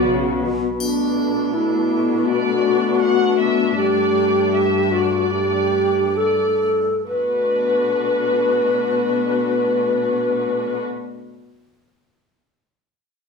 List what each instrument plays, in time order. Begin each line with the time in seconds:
Already playing: double bass section B1, viola section B3 F#4
0.05 cello section C#3
0.42 cello section B2
0.80 cello section B2, viola section A3 D4, alto flute D4, triangle
1.54 alto flute E4
2.26 alto flute F#4, violin section D5
3.01 violin section F#5
3.39 violin section E5
3.74 cello section G2, alto flute G4, violin section D5
4.54 violin section E5
4.91 alto flute F#4, violin section D5
5.31 alto flute G4
6.17 alto flute A4, violin section D5
7.08 cello section B2, viola section A3 D4, violin section F#4 B4, alto flute B4